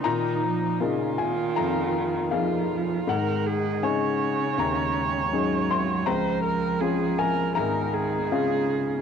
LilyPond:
<<
  \new Staff \with { instrumentName = "Viola" } { \time 4/4 \key bes \minor \tempo 4 = 80 ees'4 f'2 f'4 | bes'8 aes'8 des''2. | c''8 bes'8 aes'8 bes'8 bes'8 aes'4. | }
  \new Staff \with { instrumentName = "Upright piano" } { \time 4/4 \key bes \minor << { bes''4. aes''8 bes''4 f''4 | ges''4 aes''4 bes''4. c'''8 | bes''4. aes''8 bes''4 f''4 | } \\ { bes,4 <bes ees' aes'>4 f,4 <bes ees' aes'>4 | aes,4 <des' ees' aes'>4 ees,4 <des' ees' aes'>4 | des,4 <des' f' aes'>4 aes,4 <des' f' aes'>4 | } >> }
  \new Staff \with { instrumentName = "Cello" } { \clef bass \time 4/4 \key bes \minor ees8 f8 des8 ees4. f8 f8 | ees4 des2 ges4 | f2 ees4 des4 | }
>>